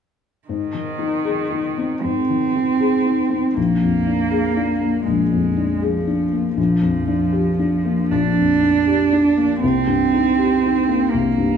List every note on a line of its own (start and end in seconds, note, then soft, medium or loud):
0.48 2.01 G#2 soft
0.48 2.04 D#3 medium
0.74 1.16 D#3 soft
0.99 1.41 D#4 soft
1.25 1.68 G#4 soft
1.51 1.94 D#4 soft
1.78 2.20 C4 soft
2.02 3.52 G#2 soft
2.02 3.55 C4 medium
2.30 2.70 D#3 soft
2.56 2.96 D#4 soft
2.80 3.21 G#4 soft
3.06 3.46 D#4 soft
3.30 3.56 C4 soft
3.54 5.03 A#1 soft
3.54 5.04 A#3 medium
3.83 4.22 F2 soft
4.07 4.47 D4 soft
4.31 4.72 G#4 soft
4.57 4.97 D4 soft
4.81 5.22 A#3 soft
5.04 6.54 A#1 soft
5.04 5.83 G#3 medium
5.32 5.72 F2 soft
5.57 5.97 D4 soft
5.82 6.56 F3 medium
5.82 6.22 G#4 soft
6.07 6.47 D4 soft
6.33 6.58 A#3 soft
6.56 8.08 A#1 soft
6.56 8.12 F3 medium
6.82 7.23 F2 soft
7.07 7.49 D4 soft
7.33 7.75 G4 soft
7.59 8.02 D4 soft
7.85 8.27 A#3 soft
8.11 9.58 A#1 soft
8.11 9.60 D4 medium
8.39 8.78 F2 soft
8.62 9.02 D4 soft
8.87 9.27 G4 soft
9.13 9.52 D4 soft
9.37 9.62 A#3 soft
9.60 11.08 C2 soft
9.60 11.12 C4 medium
9.87 10.27 G2 soft
10.13 10.52 D#4 soft
10.38 10.77 G4 soft
10.63 11.02 D#4 soft
10.89 11.27 A#3 soft
11.11 11.57 C2 soft
11.11 11.57 A#3 medium
11.38 11.57 G2 soft